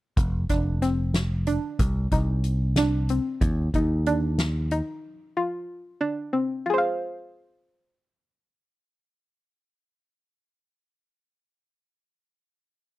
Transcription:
0.17 0.44 F1 medium
0.17 kick loud
0.17 closed hi-hat medium
0.49 1.56 F1 medium
0.49 0.69 D4 medium
0.49 kick medium
0.49 snare soft
0.49 closed hi-hat medium
0.82 1.20 C4 medium
0.82 snare soft
0.82 closed hi-hat medium
1.14 snare loud
1.14 closed hi-hat medium
1.47 1.85 D4 medium
1.47 closed hi-hat medium
1.79 2.06 C2 medium
1.79 kick loud
1.79 closed hi-hat medium
2.11 3.18 C2 medium
2.11 2.50 D#4 medium
2.11 kick medium
2.11 closed hi-hat medium
2.44 closed hi-hat medium
2.76 2.96 D4 medium
2.76 snare loud
2.76 closed hi-hat medium
3.09 3.29 C4 medium
3.09 closed hi-hat medium
3.41 3.68 D#2 medium
3.41 kick loud
3.41 closed hi-hat medium
3.74 4.80 D#2 medium
3.74 3.94 D#4 medium
3.74 kick medium
3.74 closed hi-hat soft
4.06 4.45 D4 medium
4.06 closed hi-hat medium
4.38 snare loud
4.38 closed hi-hat medium
4.71 5.10 D#4 medium
4.71 closed hi-hat medium
5.37 5.75 F4 medium
6.01 6.20 D4 medium
6.33 6.52 C4 medium
6.66 10.49 F4 medium
6.66 10.52 G#4 medium
6.74 10.56 C5 medium
6.78 10.61 F5 medium

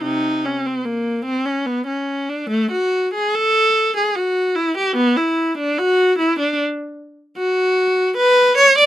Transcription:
0.02 0.40 C3 medium
0.02 0.42 D#4 medium
0.45 0.65 C#4 medium
0.66 0.86 C4 medium
0.85 1.26 A#3 medium
1.25 1.45 C4 medium
1.46 1.66 C#4 medium
1.66 1.86 B3 medium
1.87 2.28 C#4 medium
2.29 2.50 D4 medium
2.50 2.71 A3 medium
2.71 3.13 F#4 medium
3.14 3.34 G#4 medium
3.35 3.96 A4 loud
3.97 4.16 G#4 medium
4.16 4.56 F#4 medium
4.55 4.76 E4 medium
4.78 4.97 G4 medium
4.96 5.17 B3 medium
5.16 5.58 E4 medium
5.58 5.78 D4 medium
5.78 6.18 F#4 loud
6.19 6.38 E4 medium
6.39 6.58 D4 medium
7.37 8.13 F#4 loud
8.17 8.58 B4 loud
8.57 8.77 C#5 loud
8.78 8.86 D5 loud

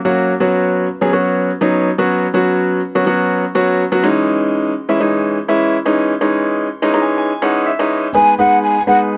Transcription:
0.05 0.32 F#3 medium
0.05 0.32 A#3 medium
0.05 0.32 C#4 medium
0.05 0.32 F#4 loud
0.40 0.86 F#3 medium
0.40 0.86 B3 medium
0.40 0.86 C#4 medium
0.40 0.86 F#4 medium
1.01 1.10 F#3 medium
1.01 1.10 B3 medium
1.01 1.10 C#4 medium
1.01 1.10 G#4 loud
1.13 1.50 F#3 medium
1.13 1.50 B3 medium
1.13 1.50 C#4 medium
1.13 1.50 F#4 loud
1.61 1.89 F#3 loud
1.61 1.89 B3 medium
1.61 1.89 C#4 medium
1.61 1.89 D#4 loud
1.98 2.25 F#3 medium
1.98 2.25 B3 medium
1.98 2.26 C#4 medium
1.98 2.26 F#4 loud
2.34 2.79 F#3 medium
2.34 2.79 B3 medium
2.34 2.79 C#4 medium
2.34 2.80 F#4 loud
2.95 3.04 F#3 medium
2.95 3.04 B3 medium
2.95 3.04 C#4 medium
2.95 3.04 F#4 loud
3.06 3.43 F#3 medium
3.06 3.43 B3 medium
3.06 3.44 C#4 medium
3.06 3.44 F#4 loud
3.55 3.82 F#3 medium
3.55 3.82 B3 medium
3.55 3.82 C#4 medium
3.55 3.82 F#4 loud
3.92 4.03 F#3 loud
3.92 4.03 B3 medium
3.92 4.02 C#4 medium
3.92 4.04 F#4 loud
4.03 4.71 E3 loud
4.03 4.71 G#3 medium
4.03 4.72 C#4 medium
4.03 4.72 D#4 loud
4.89 4.97 E3 medium
4.89 4.97 G#3 medium
4.89 4.97 C#4 medium
4.89 4.98 E4 loud
5.00 5.37 E3 medium
5.00 5.37 G#3 medium
5.00 5.37 C#4 medium
5.00 5.37 D#4 loud
5.48 5.76 E3 medium
5.48 5.76 G#3 medium
5.48 5.76 C#4 medium
5.48 5.76 E4 loud
5.85 6.12 E3 medium
5.85 6.13 G#3 medium
5.85 6.13 C#4 medium
5.85 6.13 D#4 loud
6.21 6.66 E3 medium
6.21 6.66 G#3 medium
6.21 6.67 C#4 medium
6.21 6.67 D#4 loud
6.82 6.91 E3 medium
6.82 6.91 G#3 medium
6.82 6.91 C#4 medium
6.82 6.91 D#4 loud
6.93 7.30 E3 medium
6.93 7.30 G#3 medium
6.93 7.31 C#4 medium
6.93 7.31 D#4 loud
6.93 7.01 A#5 medium
7.02 7.16 G#5 medium
7.18 7.40 G#5 medium
7.42 7.69 E3 medium
7.42 7.69 G#3 medium
7.42 7.69 C#4 medium
7.42 7.70 D#4 loud
7.42 7.65 F#5 medium
7.66 8.11 E5 medium
7.79 8.06 E3 medium
7.79 8.06 G#3 medium
7.79 8.06 C#4 medium
7.79 8.06 D#4 loud
8.14 8.33 G#3 medium
8.14 8.33 B3 medium
8.14 8.33 D#4 medium
8.14 8.33 G#4 medium
8.14 8.33 B4 medium
8.14 8.35 G#5 loud
8.39 8.76 G#3 medium
8.39 8.76 B3 medium
8.39 8.76 D#4 medium
8.39 8.76 G#4 medium
8.39 8.76 B4 medium
8.39 8.59 F#5 medium
8.63 8.83 G#5 medium
8.87 9.17 G#3 medium
8.87 9.17 B3 medium
8.87 9.17 D#4 medium
8.87 9.17 G#4 medium
8.87 9.17 B4 medium
8.87 8.98 F#5 medium

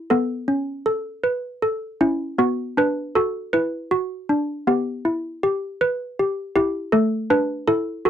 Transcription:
0.00 0.10 E4 medium
0.00 0.10 D5 medium
0.10 1.63 B3 medium
0.10 0.85 A4 medium
0.48 2.00 C#4 medium
0.86 1.61 A4 medium
1.24 2.39 B4 medium
1.62 2.39 A4 medium
2.01 2.39 C#4 medium
2.01 2.40 E4 medium
2.38 3.91 B3 medium
2.38 2.56 F#4 medium
2.77 4.28 D4 medium
2.77 3.17 B4 medium
3.15 3.90 F#4 medium
3.15 3.54 A4 medium
3.53 3.93 E4 medium
3.53 4.67 B4 medium
3.91 4.69 F#4 medium
4.29 4.67 D4 medium
4.67 6.19 B3 medium
4.67 5.42 G4 medium
5.05 6.55 E4 medium
5.43 6.18 G4 medium
5.81 6.94 B4 medium
6.19 6.54 G4 medium
6.56 6.94 E4 medium
6.56 6.94 G4 medium
6.92 7.68 A3 medium
6.92 7.09 A4 medium
7.30 7.68 D4 medium
7.30 7.69 B4 medium
7.68 8.10 E4 medium
7.68 8.05 A4 medium
8.05 8.10 F#4 medium
8.05 8.10 A4 medium

